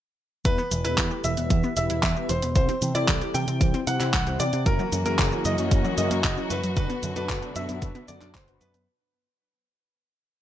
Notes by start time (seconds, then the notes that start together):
0.45 E2 E3 B3 E4 G4 B4, kick, closed hi-hat, cabasa
0.58 B3, cabasa
0.71 E1 E3, closed hi-hat, cabasa
0.84 E1 B3 E4 G4 A4 B4, closed hi-hat, cabasa
0.98 E2 E3, kick, clap, closed hi-hat, cabasa
1.11 G4, cabasa
1.24 E1 E3 E5, closed hi-hat, cabasa
1.37 E1 B3 E4 G4 B4, closed hi-hat, cabasa
1.50 E2 E3, kick, closed hi-hat, cabasa
1.63 B3, cabasa
1.77 E1 E3 B3 E4 G4 B4 E5, closed hi-hat, cabasa
1.90 E1 E4, closed hi-hat, cabasa
2.03 E2 E3 E5, kick, clap, closed hi-hat, cabasa
2.16 B3 E4 G4 B4, cabasa
2.29 E1 E3 C5, closed hi-hat, cabasa
2.42 E1 B3, closed hi-hat, cabasa
2.55 C2 E3 C4 E4 G4 C5, kick, closed hi-hat, cabasa
2.69 C4, closed hi-hat, cabasa
2.82 C3 E3, closed hi-hat, cabasa
2.95 C3 C4 E4 G4 A4 D5, closed hi-hat, cabasa
3.08 C2 E3, kick, clap, closed hi-hat, cabasa
3.21 G4, closed hi-hat, cabasa
3.34 C3 E3 G5, closed hi-hat, cabasa
3.48 C3 C4 E4 G4 C5, closed hi-hat, cabasa
3.61 C2 E3, kick, closed hi-hat, cabasa
3.74 C4, closed hi-hat, cabasa
3.87 C3 E3 C4 E4 G4 C5 F#5, closed hi-hat, cabasa
4.00 C3 E4, clap, closed hi-hat, cabasa
4.13 C2 E3 F#5, kick, clap, closed hi-hat, cabasa
4.27 C4 E4 G4 C5, closed hi-hat, cabasa
4.40 C3 E3 D5, closed hi-hat, cabasa
4.53 C3 C4, closed hi-hat, cabasa
4.66 F#1 C#3 E3 F#3 A#3 C#4 E4 F#4 A#4, kick, closed hi-hat, cabasa
4.79 F#3, cabasa
4.92 F#2 C#3, closed hi-hat, cabasa
5.06 F#2 A#3 C#4 E4 F#4 G#4 A#4, closed hi-hat, cabasa
5.19 F#1 C#3, kick, clap, closed hi-hat, cabasa
5.32 C#4, cabasa
5.45 F#2 C#3 D#5, closed hi-hat, cabasa
5.58 F#2 F#3 C#4 E4 F#4 A#4, closed hi-hat, cabasa
5.71 F#1 C#3, kick, closed hi-hat, cabasa
5.85 F#3, cabasa
5.97 F#2 C#3 C#4 E4 F#4 A#4 D#5, closed hi-hat, cabasa
6.11 F#2 A#3, closed hi-hat, cabasa
6.24 F#1 C#3 D#5, kick, clap, closed hi-hat, cabasa
6.37 C#4 E4 F#4 A#4, cabasa
6.50 F#2 C#3 B4, closed hi-hat, cabasa
6.63 F#2 F#3, closed hi-hat, cabasa
6.77 F#1 B2 D3 F#3 B3 D4 F#4 B4, kick, closed hi-hat, cabasa
6.90 B3, closed hi-hat, cabasa
7.03 F#2 D3, closed hi-hat, cabasa
7.16 F#2 B3 D4 F#4 A4 B4, closed hi-hat, cabasa
7.29 F#1 D3, kick, clap, closed hi-hat, cabasa
7.42 F#4, closed hi-hat, cabasa
7.56 F#2 D3 E5, closed hi-hat, cabasa
7.69 F#2 B3 D4 F#4 B4, closed hi-hat, cabasa
7.82 F#1 D3, kick, closed hi-hat, cabasa
7.95 B3, closed hi-hat, cabasa
8.08 F#2 D3 B3 D4 F#4 A4 D5, closed hi-hat, cabasa
8.21 F#2 D4, clap, closed hi-hat, cabasa
8.34 D3 C5, kick, clap, closed hi-hat, cabasa
8.48 B3 D4 F#4 B4, closed hi-hat, cabasa
8.61 F#2 D3 B4, closed hi-hat, cabasa
8.74 F#2 B3, closed hi-hat, cabasa